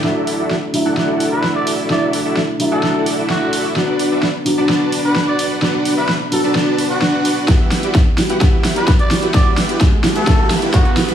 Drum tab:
HH |--o---o---o---o-|--o---o---o---o-|--o---o---o---o-|--o---o---o---o-|
SD |o---o---o---o---|o---o---o---o---|o---o---o---o---|o---o---o---o---|
BD |----------------|----------------|----------------|----------------|

HH |x-oxx-oxx-oxxxox|x-oxx-oxx-oxxxox|
SD |o-o-o-o-o-o-o-o-|o-o-o-o-o-o-o-o-|
BD |o---o---o---o---|o---o---o---o---|